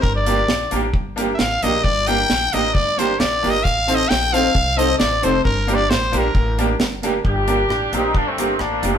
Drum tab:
HH |-x-x-x-x|-x-x-x-o|px-x-x-x|-x-x-x-x|
SD |--o---o-|--o---o-|--o---o-|--o---o-|
BD |o---o---|o---o---|o---o---|o---o---|

HH |-x-x-x-x|
SD |--r---r-|
BD |o---o---|